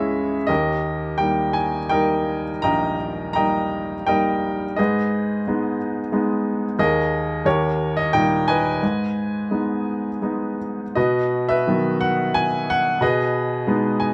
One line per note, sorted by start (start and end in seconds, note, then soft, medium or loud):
0.00 0.45 C#2 medium
0.00 0.51 G#3 soft
0.00 0.51 C#4 soft
0.00 0.51 E4 soft
0.00 0.51 G#4 medium
0.00 0.52 C#5 medium
0.00 0.47 D#5 medium
0.00 0.51 E5 medium
0.47 2.61 D#2 medium
0.47 1.51 G4 soft
0.47 1.52 A#4 soft
0.47 1.15 D#5 medium
1.18 1.77 G3 soft
1.18 1.78 A#3 soft
1.18 1.78 D#4 soft
1.18 1.56 G5 medium
1.53 1.92 G#5 medium
1.89 2.50 G3 soft
1.89 2.50 A#3 soft
1.89 2.50 D#4 soft
1.89 2.96 A#4 medium
1.89 2.62 D#5 soft
1.89 2.42 G5 medium
2.62 4.75 A#1 soft
2.62 3.34 D#5 medium
2.62 3.34 G5 medium
2.62 3.32 A#5 medium
3.33 3.94 G3 soft
3.33 3.94 A#3 soft
3.33 4.07 D#5 medium
3.33 4.05 G5 medium
3.33 4.09 A#5 medium
3.37 3.94 D#4 soft
4.07 4.64 G3 soft
4.07 4.65 A#3 soft
4.07 4.65 D#4 soft
4.07 4.74 A#4 medium
4.07 4.74 D#5 medium
4.07 4.80 G5 medium
4.76 6.75 G#2 medium
4.76 5.76 G#4 soft
4.76 5.76 B4 soft
4.76 5.42 D#5 medium
5.47 6.00 G#3 soft
5.47 6.00 B3 soft
5.47 6.00 D#4 soft
6.12 6.65 G#3 soft
6.12 6.65 B3 soft
6.12 6.65 D#4 medium
6.79 7.43 D#2 medium
6.79 7.42 G#4 medium
6.79 7.41 A#4 medium
6.79 7.42 D#5 medium
7.45 8.78 D#2 medium
7.45 8.44 G4 medium
7.45 8.44 A#4 soft
7.45 7.98 C#5 medium
7.97 8.14 D#5 medium
8.13 8.69 A#2 soft
8.13 8.69 G3 soft
8.13 8.69 D#4 medium
8.13 8.49 G5 medium
8.48 10.56 B4 medium
8.48 10.57 D#5 medium
8.48 10.56 G#5 medium
8.83 10.93 G#2 medium
9.51 10.08 G#3 soft
9.51 10.08 B3 soft
9.51 10.09 D#4 soft
10.22 10.81 G#3 soft
10.22 10.81 B3 soft
10.22 10.82 D#4 soft
10.95 12.97 B2 medium
10.95 11.97 F#4 soft
10.95 11.48 B4 soft
10.95 11.51 D#5 medium
11.49 12.47 B4 medium
11.49 12.02 E5 medium
11.67 12.33 D#3 soft
11.67 12.33 F#3 soft
11.67 12.33 B3 soft
12.01 12.35 F#5 medium
12.34 12.65 G#5 medium
12.70 13.03 F#5 medium
13.01 14.14 B2 medium
13.01 14.14 G#4 medium
13.01 14.14 B4 medium
13.01 14.14 D#5 medium
13.67 14.14 G#3 soft
13.67 14.14 B3 soft
13.67 14.14 D#4 soft
14.00 14.14 G#5 medium